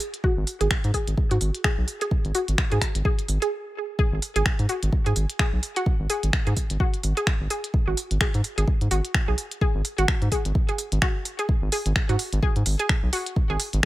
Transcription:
0.00 open hi-hat medium
0.14 closed hi-hat soft
0.24 0.33 F#4 medium
0.24 kick loud
0.37 0.44 G#1 loud
0.47 open hi-hat medium
0.61 0.68 G#1 medium
0.61 0.63 G#4 medium
0.61 closed hi-hat medium
0.71 finger snap medium
0.71 kick loud
0.84 0.91 G#2 loud
0.84 closed hi-hat soft
0.94 0.98 G#4 medium
0.94 kick medium
0.94 open hi-hat medium
1.08 1.15 G#1 medium
1.08 closed hi-hat medium
1.18 kick loud
1.31 1.38 G#2 medium
1.31 1.38 F#4 medium
1.31 closed hi-hat soft
1.41 1.51 G#1 medium
1.41 open hi-hat medium
1.55 closed hi-hat medium
1.64 1.68 G#4 medium
1.64 finger snap medium
1.64 kick loud
1.78 1.85 B1 medium
1.88 open hi-hat medium
2.01 2.04 G#4 medium
2.01 closed hi-hat medium
2.11 kick loud
2.25 2.32 G#1 loud
2.25 closed hi-hat soft
2.35 2.44 F#4 medium
2.35 open hi-hat medium
2.48 2.55 G#1 medium
2.48 closed hi-hat medium
2.58 finger snap loud
2.58 kick loud
2.72 2.79 G#2 loud
2.72 2.74 G#4 medium
2.72 closed hi-hat soft
2.82 finger snap medium
2.82 kick medium
2.82 open hi-hat medium
2.95 3.02 G#1 medium
2.95 closed hi-hat medium
3.05 3.09 G#4 medium
3.05 kick loud
3.19 closed hi-hat soft
3.28 3.38 G#1 medium
3.28 open hi-hat medium
3.42 3.49 G#4 medium
3.42 closed hi-hat medium
3.99 4.02 G#4 medium
3.99 kick loud
4.12 4.19 G#1 loud
4.22 open hi-hat medium
4.36 4.43 G#1 medium
4.36 4.38 G#4 medium
4.36 closed hi-hat medium
4.46 finger snap medium
4.46 kick loud
4.59 4.66 G#2 loud
4.59 closed hi-hat soft
4.69 4.78 F#4 medium
4.69 open hi-hat medium
4.83 4.90 G#1 medium
4.83 closed hi-hat medium
4.93 kick loud
5.06 5.13 G#2 medium
5.06 5.09 G#4 medium
5.06 closed hi-hat soft
5.16 5.26 G#1 medium
5.16 open hi-hat medium
5.30 closed hi-hat medium
5.39 5.43 G#4 medium
5.39 finger snap loud
5.39 kick loud
5.53 5.60 B1 medium
5.63 open hi-hat loud
5.76 5.83 F#4 medium
5.76 closed hi-hat medium
5.86 kick loud
6.00 6.07 G#1 loud
6.10 6.13 G#4 medium
6.10 open hi-hat loud
6.23 6.30 G#1 medium
6.23 closed hi-hat medium
6.33 finger snap loud
6.33 kick loud
6.47 6.54 G#2 loud
6.47 6.49 G#4 medium
6.47 closed hi-hat soft
6.57 kick medium
6.57 open hi-hat loud
6.70 6.77 G#1 medium
6.70 closed hi-hat medium
6.80 6.89 F#4 medium
6.80 kick loud
6.94 closed hi-hat soft
7.03 7.13 G#1 medium
7.03 open hi-hat loud
7.17 7.20 G#4 medium
7.17 closed hi-hat medium
7.27 finger snap medium
7.27 kick loud
7.41 7.48 G#1 medium
7.50 7.54 G#4 medium
7.50 open hi-hat loud
7.64 closed hi-hat soft
7.74 kick loud
7.87 7.94 G#1 loud
7.87 7.94 F#4 medium
7.97 open hi-hat loud
8.11 8.18 G#1 medium
8.11 closed hi-hat medium
8.21 8.24 G#4 medium
8.21 finger snap loud
8.21 kick loud
8.34 8.41 G#2 loud
8.34 closed hi-hat soft
8.44 open hi-hat medium
8.58 8.65 G#1 medium
8.58 8.60 G#4 medium
8.58 closed hi-hat medium
8.68 kick loud
8.81 8.88 G#2 medium
8.81 closed hi-hat soft
8.91 9.01 G#1 medium
8.91 9.00 F#4 medium
8.91 open hi-hat medium
9.05 closed hi-hat medium
9.14 finger snap medium
9.14 kick loud
9.28 9.35 B1 medium
9.28 9.31 G#4 medium
9.38 open hi-hat medium
9.52 closed hi-hat medium
9.61 9.65 G#4 medium
9.61 kick loud
9.75 9.82 G#1 loud
9.85 open hi-hat loud
9.98 10.05 G#1 medium
9.98 10.05 F#4 medium
9.98 closed hi-hat soft
10.08 finger snap medium
10.08 kick loud
10.22 10.29 G#2 loud
10.22 closed hi-hat soft
10.32 10.35 G#4 medium
10.32 kick medium
10.32 open hi-hat loud
10.45 10.52 G#1 medium
10.45 closed hi-hat medium
10.55 kick loud
10.69 10.71 G#4 medium
10.69 closed hi-hat soft
10.78 open hi-hat medium
10.92 10.99 G#1 medium
10.92 closed hi-hat medium
11.02 11.11 F#4 medium
11.02 finger snap medium
11.02 kick loud
11.25 open hi-hat loud
11.39 11.42 G#4 medium
11.39 closed hi-hat soft
11.49 kick loud
11.62 11.69 G#1 loud
11.72 11.76 G#4 medium
11.72 open hi-hat medium
11.86 11.93 G#1 medium
11.86 closed hi-hat medium
11.96 finger snap medium
11.96 kick loud
12.09 12.16 G#2 loud
12.09 12.16 F#4 medium
12.09 closed hi-hat soft
12.19 open hi-hat medium
12.33 12.40 G#1 medium
12.33 closed hi-hat medium
12.43 12.46 G#4 medium
12.43 kick loud
12.56 12.63 G#2 medium
12.56 closed hi-hat soft
12.66 12.76 G#1 medium
12.66 open hi-hat medium
12.79 12.82 G#4 medium
12.79 closed hi-hat medium
12.89 finger snap medium
12.89 kick loud
13.03 13.10 B1 medium
13.13 13.22 F#4 medium
13.13 open hi-hat medium
13.13 open hi-hat loud
13.26 closed hi-hat medium
13.36 kick loud
13.50 13.57 G#1 loud
13.50 13.52 G#4 medium
13.60 open hi-hat medium
13.73 13.80 G#1 medium
13.73 closed hi-hat medium

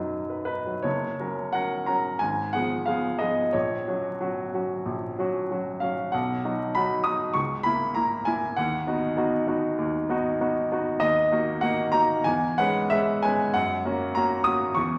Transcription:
0.00 0.88 F#2 soft
0.00 0.66 F#3 soft
0.00 0.47 D#4 soft
0.00 0.30 B4 soft
0.30 0.44 B4 soft
0.45 0.77 D#4 soft
0.45 0.83 B4 medium
0.66 0.85 F#3 soft
0.83 1.18 F#1 soft
0.83 1.53 C#5 medium
1.20 1.50 F#3 soft
1.20 1.51 C#4 soft
1.20 1.51 A#4 soft
1.53 1.84 F#3 soft
1.53 1.84 C#4 soft
1.53 1.84 A#4 soft
1.53 1.87 F#5 medium
1.86 2.18 F#3 soft
1.86 2.18 C#4 soft
1.86 2.18 A#4 soft
1.86 2.20 A#5 medium
2.19 2.53 G#1 soft
2.19 2.53 G#5 medium
2.53 2.84 F3 soft
2.53 2.84 B3 soft
2.53 2.84 G#4 soft
2.53 2.86 F#5 medium
2.86 3.17 F3 soft
2.86 3.17 B3 soft
2.86 3.17 G#4 soft
2.86 3.19 F5 medium
3.19 3.50 F3 soft
3.19 3.50 B3 soft
3.19 3.51 G#4 soft
3.19 3.53 D#5 medium
3.53 3.86 A#1 soft
3.53 5.49 C#5 medium
3.88 4.17 F#3 soft
3.88 4.17 C#4 soft
3.88 4.18 F#4 soft
4.20 4.50 F#3 soft
4.20 4.50 C#4 soft
4.20 4.50 F#4 soft
4.54 4.82 F#3 soft
4.54 4.83 C#4 soft
4.54 4.83 F#4 soft
4.85 5.17 A#1 soft
5.19 5.47 F#3 soft
5.19 5.47 C#4 soft
5.19 5.48 F#4 soft
5.51 5.79 F#3 soft
5.51 5.79 C#4 soft
5.51 5.79 F#4 soft
5.80 6.10 F#3 soft
5.80 6.10 C#4 soft
5.80 6.10 F#4 soft
5.80 6.12 F5 medium
6.12 6.43 B1 soft
6.12 6.73 F#5 medium
6.44 6.71 F#3 soft
6.44 6.71 D#4 soft
6.44 6.72 F#4 soft
6.75 7.02 F#3 soft
6.75 7.03 D#4 soft
6.75 7.03 F#4 soft
6.75 7.04 B5 medium
7.04 7.32 F#3 soft
7.04 7.32 D#4 soft
7.04 7.33 F#4 soft
7.04 7.34 D#6 medium
7.34 7.64 C#2 soft
7.34 7.64 C#6 medium
7.63 7.93 A#3 soft
7.63 7.93 E4 soft
7.63 7.95 B5 medium
7.94 8.24 A#3 soft
7.94 8.24 E4 soft
7.94 8.26 A#5 medium
8.25 8.54 A#3 soft
8.25 8.54 E4 soft
8.25 8.56 G#5 medium
8.56 8.86 D#2 medium
8.56 10.40 F#5 medium
8.87 9.14 B3 soft
8.87 9.14 D#4 soft
8.87 9.14 F#4 soft
9.17 9.44 B3 soft
9.17 9.44 D#4 soft
9.17 9.44 F#4 medium
9.47 9.75 B3 soft
9.47 9.75 D#4 soft
9.47 9.75 F#4 soft
9.78 10.08 D#2 medium
10.09 10.37 B3 soft
10.09 10.38 D#4 medium
10.09 10.38 F#4 medium
10.41 10.69 B3 soft
10.41 10.69 D#4 soft
10.41 10.69 F#4 soft
10.72 10.99 B3 soft
10.72 10.99 D#4 soft
10.72 11.00 F#4 soft
11.00 11.31 D#2 medium
11.00 11.62 D#5 medium
11.32 11.59 A#3 soft
11.32 11.59 D#4 soft
11.32 11.60 F#4 soft
11.61 11.91 A#3 medium
11.61 11.91 D#4 soft
11.61 11.91 F#4 soft
11.61 11.93 F#5 medium
11.92 12.22 A#3 soft
11.92 12.23 D#4 soft
11.92 12.23 F#4 medium
11.92 12.25 A#5 medium
12.24 12.57 E2 medium
12.24 12.58 G#5 medium
12.58 12.88 G#3 medium
12.58 12.88 C#4 medium
12.58 12.88 B4 medium
12.58 12.90 F#5 loud
12.90 13.20 G#3 soft
12.90 13.20 C#4 soft
12.90 13.20 B4 soft
12.90 13.22 E5 medium
13.22 13.51 G#3 soft
13.22 13.51 C#4 soft
13.22 13.52 B4 soft
13.22 13.53 G#5 medium
13.54 13.84 F#2 medium
13.54 14.15 F#5 medium
13.85 14.12 A#3 soft
13.85 14.13 C#4 soft
13.85 14.13 F#4 medium
14.15 14.43 A#3 soft
14.15 14.44 C#4 medium
14.15 14.44 F#4 medium
14.15 14.46 A#5 medium
14.44 14.74 A#3 soft
14.44 14.74 C#4 soft
14.44 14.75 F#4 soft
14.44 14.76 D#6 medium
14.75 14.98 E2 medium
14.75 14.98 C#6 medium

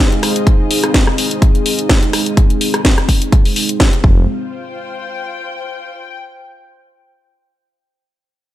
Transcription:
0.00 4.00 G#3 medium
0.00 4.00 C4 medium
0.00 4.00 D#4 medium
0.00 4.03 F4 medium
0.00 4.00 G#4 medium
0.00 4.04 C5 medium
0.00 4.04 D#5 medium
0.12 closed hi-hat soft
0.23 cross-stick medium
0.23 open hi-hat loud
0.36 closed hi-hat medium
0.47 kick loud
0.47 closed hi-hat medium
0.71 open hi-hat loud
0.84 cross-stick medium
0.84 closed hi-hat medium
0.94 kick loud
0.94 snare loud
0.94 closed hi-hat medium
1.07 cross-stick medium
1.18 open hi-hat loud
1.31 closed hi-hat medium
1.42 kick loud
1.42 closed hi-hat medium
1.55 closed hi-hat soft
1.66 open hi-hat loud
1.79 closed hi-hat medium
1.89 kick loud
1.89 snare loud
1.89 closed hi-hat medium
2.03 closed hi-hat soft
2.13 cross-stick medium
2.13 open hi-hat loud
2.26 closed hi-hat medium
2.37 kick loud
2.37 closed hi-hat medium
2.50 closed hi-hat soft
2.61 open hi-hat loud
2.74 cross-stick medium
2.74 closed hi-hat medium
2.85 kick loud
2.85 snare loud
2.85 closed hi-hat medium
2.98 cross-stick medium
2.98 closed hi-hat soft
3.09 kick medium
3.09 open hi-hat loud
3.22 closed hi-hat medium
3.32 kick loud
3.32 closed hi-hat medium
3.45 open hi-hat medium
3.56 open hi-hat loud
3.69 closed hi-hat medium
3.80 kick loud
3.80 snare loud
3.80 closed hi-hat medium
3.93 closed hi-hat soft
4.04 4.26 F1 loud
4.04 5.90 F4 medium
4.04 kick loud
4.11 5.90 C5 medium
4.43 6.14 G5 medium

